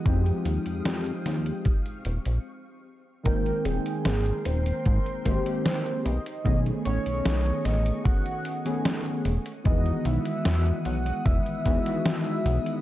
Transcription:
<<
  \new Staff \with { instrumentName = "String machine" } { \time 4/4 \key aes \major \tempo 4 = 75 << { <gis f'' ees'''>2 <c' f'' des'''>4 r4 | <bes' g'' c'''>2.~ <bes' g'' c'''>8 <a dis'' cis'''>8~ | <a dis'' cis'''>2.~ <a dis'' cis'''>8 <gis dis'''>8~ | <gis dis'''>1 | } \\ { g''2. r4 | r1 | r2. r8 fis''8~ | fis''1 | } >> }
  \new Staff \with { instrumentName = "Soft synth lead" } { \time 4/4 \key aes \major r1 | bes'8 aes'4 c''4. c''8 dis''8 | dis''8 cis''4 dis''8 fis''4. r8 | dis''8 e''4 fis''8 e''2 | }
  \new Staff \with { instrumentName = "Synth keys" } { \time 4/4 \key aes \major <f aes c' ees' g'>2 r2 | <ees aes bes c' g''>2~ <ees aes bes c' g''>8 <ees aes bes c' g'>16 <ees aes bes c' g'>8. r8 | <dis a b cis' gis'>2~ <dis a b cis' gis'>8. <dis a b cis' gis'>8. r8 | <dis e gis b fis'>2~ <dis e gis b fis'>8 <e gis b dis' fis'>16 <dis e gis b fis'>4~ <dis e gis b fis'>16 | }
  \new Staff \with { instrumentName = "Analog synth bass" } { \clef bass \time 4/4 \key aes \major f,16 r16 ees,16 f,16 f,16 r16 ees,16 r8. ees,,16 bes,,16 r4 | aes,,16 r16 ees,,16 r16 aes,,16 r16 ees,,16 r16 aes,16 r16 aes,,16 r8. b,,16 r16 | b,,16 r16 a,,16 b,,16 b,,16 r16 a,,16 r4. r16 e,,16 r16 | e,16 r16 b,,16 r16 e,16 r16 b,,16 r16 e,,16 r16 e,16 r8. b,,16 r16 | }
  \new DrumStaff \with { instrumentName = "Drums" } \drummode { \time 4/4 <hh bd>16 hh16 hh16 hh16 <hh sn>16 hh16 <hh sn>16 hh16 <hh bd>16 hh16 hh16 hh16 r4 | <hh bd>16 hh16 hh16 hh16 <hh sn>16 hh16 hh16 hh16 <hh bd>16 hh16 <hh bd>16 hh16 <hh sn>16 hh16 hh16 hh16 | <hh bd>16 hh16 hh16 hh16 <hh sn>16 hh16 <hh sn>16 hh16 <hh bd>16 hh16 hh16 hh16 <hh sn>16 hh16 hh16 hh16 | <hh bd>16 hh16 hh16 hh16 <hh sn>16 hh16 hh16 hh16 <hh bd>16 hh16 <hh bd>16 hh16 <hh sn>16 hh16 hh16 hh16 | }
>>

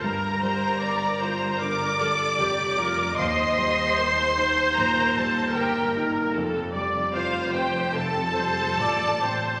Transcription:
<<
  \new Staff \with { instrumentName = "Violin section" } { \time 4/4 \key g \minor \tempo 4 = 76 bes''2 d'''2 | c'''2 bes''8 a''8 g''8 r8 | r4 f''8 g''8 a''2 | }
  \new Staff \with { instrumentName = "Viola section" } { \time 4/4 \key g \minor bes'8 c''8 d''8 c''8 bes'8 a'8 g'8 bes'8 | ees''4 c''2 bes'4 | a'8 d''8 c''4 a'8 c''8 d''8 c''8 | }
  \new Staff \with { instrumentName = "Violin section" } { \time 4/4 \key g \minor bes'2 d''2 | c''2 bes'8 a'8 g'8 r8 | r4 f'8 g'8 a'2 | }
  \new Staff \with { instrumentName = "Grand piano" } { \time 4/4 \key g \minor g,8 g8 bes'8 f'8 d8 g8 bes'8 f'8 | ees,8 g8 bes'8 ees'8 bes,8 g8 bes'8 ees'8 | f,8 g8 f'8 c'8 c8 g8 f'8 c'8 | }
  \new Staff \with { instrumentName = "Cello section" } { \clef bass \time 4/4 \key g \minor g,2. f,4 | ees,2. g,4 | f,2. a,4 | }
  \new Staff \with { instrumentName = "Double bass section" } { \clef bass \time 4/4 \key g \minor g,,2. f,,4 | ees,2. g,,4 | f,,2. a,,4 | }
>>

